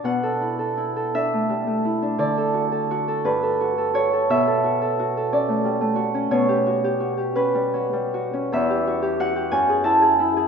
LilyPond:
\new Staff \with { instrumentName = "Harp" } { \time 6/8 \key b \minor \tempo 4. = 58 << { <b' cis'' d'' fis''>4. e''4. | d''4. b'4 cis''8 | e''4. d''4. | cis''4. b'4. |
\key e \minor e''4 fis''8 gis''8 a''4 | } \\ { <b, b d' fis'>16 a'16 e'16 a'16 e'16 a'16 d'16 a16 g16 a16 e'16 d'16 | d16 a'16 fis'16 a'16 fis'16 a'16 g,16 a'16 fis'16 a'16 fis'16 a'16 | b,16 a'16 fis'16 a'16 fis'16 a'16 cis'16 a16 g16 a16 fis'16 cis'16 | b,16 g'16 fis'16 g'16 fis'16 g'16 cis'16 g16 fis16 g16 fis'16 cis'16 |
e,16 g'16 fis'16 g'16 fis'16 g'16 fis,16 gis'16 e'16 gis'16 e'16 gis'16 | } >> }